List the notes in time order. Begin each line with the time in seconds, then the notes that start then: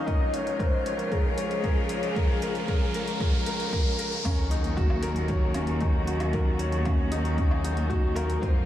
Already playing: D#4 A#4, riser
0.06 C#2 C#3 F3 G#3 F4 A#4 D#5, kick, closed hi-hat
0.33 C#5, closed hi-hat
0.47 closed hi-hat
0.59 A#4 C5, kick, closed hi-hat
0.86 C#5, closed hi-hat
0.97 A#4, closed hi-hat
1.12 G#4 A#4, kick, closed hi-hat
1.38 C#5, closed hi-hat
1.51 closed hi-hat
1.64 A#4, kick, closed hi-hat
1.89 C#5, closed hi-hat
2.03 closed hi-hat
2.16 A#4, kick, closed hi-hat
2.42 A#4, closed hi-hat
2.55 closed hi-hat
2.68 A#4, kick, closed hi-hat
2.94 A#4, closed hi-hat
3.08 closed hi-hat
3.20 A#4, kick, closed hi-hat
3.46 A#4, closed hi-hat
3.60 closed hi-hat
3.73 A#4, kick, closed hi-hat
3.99 A#4, closed hi-hat
4.12 closed hi-hat
4.24 D#2 C#3 F#3 A#3 C#4 D#4 F#4, kick, closed hi-hat, crash, sub drop, low woodblock
4.51 D#4, closed hi-hat
4.64 closed hi-hat
4.77 F#4, kick, closed hi-hat
4.90 low woodblock
5.03 A#4, closed hi-hat
5.16 closed hi-hat
5.28 C#5, kick, closed hi-hat
5.54 C#4, closed hi-hat, low woodblock
5.67 closed hi-hat
5.81 D#4, kick, closed hi-hat
6.07 F#4, closed hi-hat
6.20 closed hi-hat, low woodblock
6.33 A#4, kick, closed hi-hat
6.59 C#5, closed hi-hat
6.72 closed hi-hat
6.85 C#4, kick, closed hi-hat, low woodblock
7.12 D#4, closed hi-hat
7.25 closed hi-hat
7.38 C#4, kick, closed hi-hat
7.51 low woodblock
7.64 D#4, closed hi-hat
7.77 closed hi-hat
7.90 F#4, kick, closed hi-hat
8.15 A#4, closed hi-hat, low woodblock
8.30 closed hi-hat
8.42 F2 C3 F3 G#3 F4 C5, kick, closed hi-hat